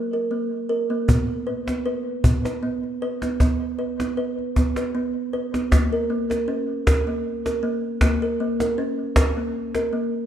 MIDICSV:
0, 0, Header, 1, 3, 480
1, 0, Start_track
1, 0, Tempo, 770218
1, 671, Time_signature, 3, 2, 24, 8
1, 6395, End_track
2, 0, Start_track
2, 0, Title_t, "Kalimba"
2, 0, Program_c, 0, 108
2, 0, Note_on_c, 0, 54, 91
2, 0, Note_on_c, 0, 58, 56
2, 78, Note_off_c, 0, 54, 0
2, 79, Note_off_c, 0, 58, 0
2, 83, Note_on_c, 0, 70, 54
2, 192, Note_off_c, 0, 70, 0
2, 192, Note_on_c, 0, 58, 60
2, 432, Note_off_c, 0, 58, 0
2, 432, Note_on_c, 0, 70, 64
2, 561, Note_off_c, 0, 70, 0
2, 561, Note_on_c, 0, 58, 62
2, 672, Note_off_c, 0, 58, 0
2, 674, Note_on_c, 0, 59, 67
2, 914, Note_off_c, 0, 59, 0
2, 914, Note_on_c, 0, 71, 63
2, 1042, Note_off_c, 0, 71, 0
2, 1042, Note_on_c, 0, 59, 52
2, 1153, Note_off_c, 0, 59, 0
2, 1157, Note_on_c, 0, 71, 71
2, 1395, Note_off_c, 0, 71, 0
2, 1396, Note_on_c, 0, 59, 58
2, 1524, Note_off_c, 0, 59, 0
2, 1526, Note_on_c, 0, 71, 57
2, 1636, Note_off_c, 0, 71, 0
2, 1637, Note_on_c, 0, 59, 66
2, 1876, Note_off_c, 0, 59, 0
2, 1883, Note_on_c, 0, 71, 69
2, 2006, Note_on_c, 0, 59, 58
2, 2008, Note_off_c, 0, 71, 0
2, 2114, Note_off_c, 0, 59, 0
2, 2120, Note_on_c, 0, 59, 81
2, 2359, Note_on_c, 0, 71, 62
2, 2483, Note_off_c, 0, 59, 0
2, 2486, Note_off_c, 0, 71, 0
2, 2490, Note_on_c, 0, 59, 55
2, 2599, Note_off_c, 0, 59, 0
2, 2600, Note_on_c, 0, 71, 69
2, 2838, Note_off_c, 0, 71, 0
2, 2843, Note_on_c, 0, 59, 62
2, 2968, Note_off_c, 0, 59, 0
2, 2975, Note_on_c, 0, 71, 60
2, 3081, Note_off_c, 0, 71, 0
2, 3083, Note_on_c, 0, 59, 66
2, 3319, Note_off_c, 0, 59, 0
2, 3323, Note_on_c, 0, 71, 67
2, 3448, Note_off_c, 0, 71, 0
2, 3452, Note_on_c, 0, 59, 58
2, 3559, Note_off_c, 0, 59, 0
2, 3562, Note_on_c, 0, 58, 79
2, 3687, Note_off_c, 0, 58, 0
2, 3693, Note_on_c, 0, 70, 66
2, 3800, Note_off_c, 0, 70, 0
2, 3801, Note_on_c, 0, 58, 69
2, 3926, Note_on_c, 0, 70, 62
2, 3927, Note_off_c, 0, 58, 0
2, 4036, Note_off_c, 0, 70, 0
2, 4037, Note_on_c, 0, 61, 72
2, 4275, Note_off_c, 0, 61, 0
2, 4279, Note_on_c, 0, 70, 67
2, 4405, Note_off_c, 0, 70, 0
2, 4407, Note_on_c, 0, 58, 61
2, 4644, Note_off_c, 0, 58, 0
2, 4647, Note_on_c, 0, 70, 61
2, 4754, Note_on_c, 0, 58, 69
2, 4755, Note_off_c, 0, 70, 0
2, 4990, Note_off_c, 0, 58, 0
2, 4997, Note_on_c, 0, 58, 85
2, 5123, Note_off_c, 0, 58, 0
2, 5124, Note_on_c, 0, 70, 68
2, 5233, Note_off_c, 0, 70, 0
2, 5236, Note_on_c, 0, 58, 71
2, 5362, Note_off_c, 0, 58, 0
2, 5365, Note_on_c, 0, 70, 61
2, 5472, Note_on_c, 0, 61, 76
2, 5473, Note_off_c, 0, 70, 0
2, 5709, Note_on_c, 0, 70, 59
2, 5710, Note_off_c, 0, 61, 0
2, 5838, Note_off_c, 0, 70, 0
2, 5838, Note_on_c, 0, 58, 60
2, 6076, Note_on_c, 0, 70, 68
2, 6077, Note_off_c, 0, 58, 0
2, 6187, Note_off_c, 0, 70, 0
2, 6187, Note_on_c, 0, 58, 66
2, 6395, Note_off_c, 0, 58, 0
2, 6395, End_track
3, 0, Start_track
3, 0, Title_t, "Cajon"
3, 677, Note_on_c, 9, 36, 47
3, 739, Note_off_c, 9, 36, 0
3, 1044, Note_on_c, 9, 38, 41
3, 1106, Note_off_c, 9, 38, 0
3, 1396, Note_on_c, 9, 36, 51
3, 1458, Note_off_c, 9, 36, 0
3, 1529, Note_on_c, 9, 38, 38
3, 1591, Note_off_c, 9, 38, 0
3, 1766, Note_on_c, 9, 38, 15
3, 1828, Note_off_c, 9, 38, 0
3, 2007, Note_on_c, 9, 38, 41
3, 2069, Note_off_c, 9, 38, 0
3, 2120, Note_on_c, 9, 36, 53
3, 2120, Note_on_c, 9, 38, 15
3, 2182, Note_off_c, 9, 36, 0
3, 2182, Note_off_c, 9, 38, 0
3, 2492, Note_on_c, 9, 38, 41
3, 2554, Note_off_c, 9, 38, 0
3, 2733, Note_on_c, 9, 38, 16
3, 2796, Note_off_c, 9, 38, 0
3, 2844, Note_on_c, 9, 36, 51
3, 2844, Note_on_c, 9, 38, 17
3, 2906, Note_off_c, 9, 36, 0
3, 2906, Note_off_c, 9, 38, 0
3, 2968, Note_on_c, 9, 38, 37
3, 3030, Note_off_c, 9, 38, 0
3, 3081, Note_on_c, 9, 38, 15
3, 3143, Note_off_c, 9, 38, 0
3, 3325, Note_on_c, 9, 38, 15
3, 3387, Note_off_c, 9, 38, 0
3, 3453, Note_on_c, 9, 38, 38
3, 3516, Note_off_c, 9, 38, 0
3, 3565, Note_on_c, 9, 36, 51
3, 3565, Note_on_c, 9, 38, 48
3, 3627, Note_off_c, 9, 36, 0
3, 3627, Note_off_c, 9, 38, 0
3, 3932, Note_on_c, 9, 38, 38
3, 3994, Note_off_c, 9, 38, 0
3, 4282, Note_on_c, 9, 36, 54
3, 4282, Note_on_c, 9, 38, 53
3, 4344, Note_off_c, 9, 36, 0
3, 4344, Note_off_c, 9, 38, 0
3, 4648, Note_on_c, 9, 38, 40
3, 4710, Note_off_c, 9, 38, 0
3, 4992, Note_on_c, 9, 36, 51
3, 4992, Note_on_c, 9, 38, 52
3, 5054, Note_off_c, 9, 36, 0
3, 5054, Note_off_c, 9, 38, 0
3, 5361, Note_on_c, 9, 38, 43
3, 5423, Note_off_c, 9, 38, 0
3, 5708, Note_on_c, 9, 36, 60
3, 5708, Note_on_c, 9, 38, 58
3, 5771, Note_off_c, 9, 36, 0
3, 5771, Note_off_c, 9, 38, 0
3, 6073, Note_on_c, 9, 38, 40
3, 6136, Note_off_c, 9, 38, 0
3, 6395, End_track
0, 0, End_of_file